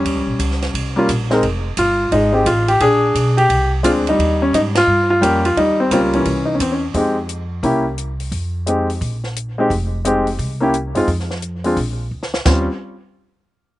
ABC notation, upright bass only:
X:1
M:4/4
L:1/8
Q:"Swing" 1/4=174
K:Ebmix
V:1 name="Upright bass" clef=bass
(3E,, D,, B,,, D,,2 C,,2 B,,,2 | F,,,2 G,,,2 A,,,2 =A,,,2 | B,,,2 _C,,2 =C,,2 =D,,2 | E,,2 A,,2 G,,2 F,,2 |
E,,2 D,,2 C,,2 =E,,2 | F,,4 C,,4 | F,,4 B,,,4 | F,,,4 C,,3 _G,, |
F,,4 B,,,2 =D,,2 | E,, z6 z |]